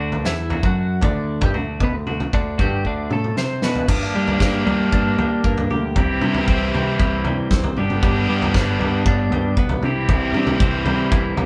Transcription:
Already playing: picked electric bass D2, clean electric guitar D3 D4
0.00 overdriven electric guitar A3 D4 F#4
0.12 floor tom
0.25 picked electric bass E2, clean electric guitar E3 E4, snare
0.50 overdriven electric guitar A3 D4 F#4, floor tom
0.63 picked electric bass F#2, clean electric guitar F#3 F#4, kick
1.01 picked electric bass D2, clean electric guitar D3 D4, kick, floor tom
1.41 picked electric bass G2, clean electric guitar G3 G4, kick, floor tom
1.54 picked electric bass D2, clean electric guitar D3, overdriven electric guitar A3 D4 F#4, mid tom
1.80 picked electric bass B2, clean electric guitar B3, kick, floor tom
1.84 clean electric guitar B4
1.93 picked electric bass D2, clean electric guitar D3
2.07 overdriven electric guitar A3 D4 F#4, mid tom
2.20 floor tom, mid tom
2.33 picked electric bass D2, clean electric guitar D3 D4, kick
2.58 picked electric bass G2, clean electric guitar G3 G4, overdriven electric guitar A3 D4 F#4, kick, floor tom
2.85 picked electric bass D2, clean electric guitar D3 D4, kick
3.10 picked electric bass A2, clean electric guitar A3 A4, mid tom
3.24 mid tom
3.37 picked electric bass C3, clean electric guitar C4 C5, snare
3.62 picked electric bass B2, overdriven electric guitar A3 D4 F#4, clean electric guitar B3 B4, snare
3.75 floor tom
3.88 picked electric bass G2, clean electric guitar G2, overdriven electric guitar A#3 D4 G4, kick, floor tom, crash
4.15 clean electric guitar G3, picked electric bass G3
4.27 floor tom
4.40 picked electric bass G2, clean electric guitar A#3, kick, snare
4.66 picked electric bass G3, clean electric guitar G3, floor tom
4.92 picked electric bass G2, clean electric guitar D4, kick
5.18 picked electric bass G3, clean electric guitar G3, floor tom
5.44 picked electric bass G2, clean electric guitar A#3, kick
5.58 floor tom
5.70 picked electric bass D2, clean electric guitar G4, mid tom
5.96 picked electric bass C2, clean electric guitar C3, overdriven electric guitar E3 C4 E4 G4, kick, floor tom
6.21 picked electric bass C3, clean electric guitar G3, mid tom
6.34 floor tom, mid tom
6.48 picked electric bass C2, clean electric guitar C4, kick
6.74 picked electric bass C3, clean electric guitar G3, floor tom
6.99 picked electric bass C2, clean electric guitar E4, kick
7.25 picked electric bass C3, clean electric guitar G3, floor tom
7.51 picked electric bass C2, clean electric guitar C4, kick, snare
7.64 floor tom
7.77 picked electric bass G1, clean electric guitar G3, overdriven electric guitar B3 D4 G4, mid tom
7.90 mid tom
8.03 picked electric bass G1, clean electric guitar G3, kick, floor tom
8.29 picked electric bass G2, clean electric guitar G3
8.42 floor tom
8.54 picked electric bass G1, clean electric guitar B3, kick, snare
8.79 picked electric bass G2, clean electric guitar G3, floor tom
9.06 picked electric bass G1, clean electric guitar D4, kick
9.30 picked electric bass G2, clean electric guitar G3, floor tom
9.57 picked electric bass B1, clean electric guitar B3, kick
9.69 floor tom
9.82 picked electric bass C2, clean electric guitar C3, overdriven electric guitar E3 C4 E4 G4, mid tom
10.09 picked electric bass C2, clean electric guitar C3, kick, floor tom
10.33 picked electric bass C3, clean electric guitar G3, mid tom
10.47 floor tom, mid tom
10.60 picked electric bass C2, clean electric guitar C4, kick
10.85 picked electric bass C3, clean electric guitar G3, floor tom
11.12 picked electric bass C2, clean electric guitar E4, kick
11.37 picked electric bass B1, clean electric guitar G3, floor tom

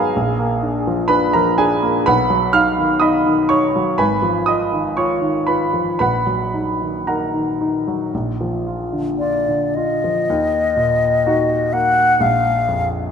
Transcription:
Already playing: grand piano G#1 F#3 B3 D#4 G#4 A#4 B4 C#5 D#5 F5 G#5 A#5 B5 C#6
0.16 grand piano A#1
0.39 grand piano A#3
0.63 grand piano D4
0.87 grand piano F3
1.08 grand piano D4 B4 B5
1.33 grand piano F3 A#4 A#5
1.58 grand piano D4 G#4 G#5
1.82 grand piano A#3
2.06 grand piano B1 B4 F#5 B5
2.30 grand piano F#3
2.53 grand piano D#4 F5 F6
2.79 grand piano D#3
3.00 grand piano D#4 D#5 B5 D#6
3.26 grand piano D#3
3.49 grand piano D#4 C#5 C#6
3.76 grand piano F#3
3.98 grand piano G#1 B4 G#5 B5
4.22 grand piano F3
4.46 grand piano F4 D#5 D#6
4.72 grand piano D#3
4.97 grand piano F4 C#5 C#6
5.21 grand piano D#3
5.47 grand piano F4 B4 B5
5.73 grand piano F3
5.99 grand piano A#1 B4 F#5 B5
6.26 grand piano F#3
6.54 grand piano D#4
6.82 grand piano D#3
7.07 grand piano D#4 A#4 F#5 A#5
7.34 grand piano D#3
7.61 grand piano D#4
7.87 grand piano F#3
8.14 grand piano A#1
8.41 grand piano F3
8.67 grand piano F4
8.93 grand piano D3
9.19 grand piano F4, flute D5
9.48 grand piano D3
9.75 grand piano F4, flute D#5
10.04 grand piano F3
10.29 grand piano D#2
10.76 grand piano A#2
11.26 grand piano D#4 F#4
11.73 grand piano A#3, flute F#5
12.20 grand piano A#1, flute F5
12.68 grand piano F2

